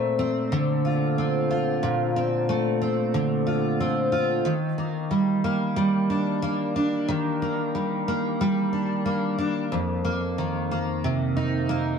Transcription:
Already playing: A#2 A3 C4
0.19 C4
0.52 D3
0.85 F4
1.18 C4
1.51 F4
1.83 A#2
2.16 C4
2.49 A3
2.82 C4
3.14 D3
3.47 F4
3.80 C4
4.12 F4
4.45 D#3
4.78 A#3
5.11 G3
5.44 A#3
5.76 G3
6.10 D4
6.42 A#3
6.76 D4
7.08 D#3
7.42 A#3
7.75 G3
8.08 A#3
8.41 G3
8.73 D4
9.06 A#3
9.38 D4
9.72 F2
10.05 A#3
10.38 D#3
10.71 A#3
11.04 C3
11.37 D#4
11.69 A#3

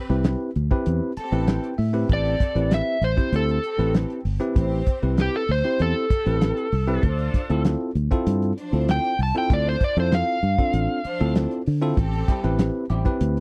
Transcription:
Already playing: C4 G4 B4
0.09 C2 C4 E4 G4 B4, snare
0.24 snare, closed hi-hat
0.56 D2, closed hi-hat
0.71 C4 E4 G4 B4, kick
0.86 E2, closed hi-hat
1.17 C4 G4 A4 A5, muted fingered electric bass stroke, closed hi-hat
1.32 A1 C4 E4 G4 B4, closed hi-hat
1.47 G5, snare, closed hi-hat
1.63 closed hi-hat
1.78 A2 E5, open hi-hat
1.93 C4 E4 G4 B4
2.09 A1 C4 G4 A4, kick, closed hi-hat
2.13 D5
2.25 closed hi-hat
2.40 kick, snare, closed hi-hat
2.55 A1 C4 E4 G4 B4, closed hi-hat
2.71 E5, snare, closed hi-hat
3.01 A1 C5, closed hi-hat
3.17 C4 E4 G4 C5, kick, closed hi-hat
3.32 D2 A4, closed hi-hat
3.49 closed hi-hat
3.63 C4 G4 A4, closed hi-hat
3.78 A1 C4 E4 G4 B4, closed hi-hat
3.94 snare, closed hi-hat
4.10 closed hi-hat
4.25 G1, open hi-hat
4.40 C4 E4 G4 B4, closed hi-hat
4.55 A1 C4 G4 C5, kick, closed hi-hat
4.86 kick, closed hi-hat
5.02 C2 C4 E4 G4 B4
5.18 G4, snare, closed hi-hat
5.36 A4
5.48 D2 C5, open hi-hat
5.64 C4 E4 G4 C5
5.79 E2 A4, closed hi-hat
6.09 C4 G4 A4, muted fingered electric bass stroke, kick, closed hi-hat
6.26 A1 C4 E4 G4 B4, closed hi-hat
6.41 snare, closed hi-hat
6.57 closed hi-hat
6.72 C2, open hi-hat
6.88 C4 E4 G4 B4
7.03 D2 D4 F4 C5, kick, closed hi-hat
7.19 closed hi-hat
7.34 kick, snare, closed hi-hat
7.50 D2 C4 E4 F4 A4, closed hi-hat
7.65 snare, closed hi-hat
7.95 D2, closed hi-hat
8.11 C4 E4 F4 A4, kick, closed hi-hat
8.27 G2, closed hi-hat
8.42 closed hi-hat
8.58 F3 D4 C5, closed hi-hat
8.72 D2 C4 E4 F4 A4, closed hi-hat
8.88 G5, snare, closed hi-hat
9.04 closed hi-hat
9.19 C2, open hi-hat
9.23 A5
9.35 C4 E4 F4 A4 G5, closed hi-hat
9.50 D2 D4 F4 C5 D5, kick, closed hi-hat
9.69 C5
9.81 D5, kick, closed hi-hat
9.97 F2 C4 E4 F4 A4 C5
10.12 F5, snare, closed hi-hat
10.43 G2, closed hi-hat
10.58 C4 D4 F4 A4, kick
10.73 A1, closed hi-hat
11.04 F3 D4 C5, muted fingered electric bass stroke, closed hi-hat
11.20 D2 C4 E4 F4 A4, closed hi-hat
11.35 snare, closed hi-hat
11.51 closed hi-hat
11.66 D3, open hi-hat
11.82 C4 E4 F4 A4
11.96 A1 C4 G4 A4, kick, closed hi-hat
12.13 closed hi-hat
12.28 G3 C4 E4 G4, kick, snare, closed hi-hat
12.43 A1 C4 E4 G4 B4, closed hi-hat
12.59 snare, closed hi-hat
12.90 A1 G3 C4 E4 G4, closed hi-hat
13.05 C4 E4 G4 B4, kick, closed hi-hat
13.21 D2, closed hi-hat
13.37 closed hi-hat

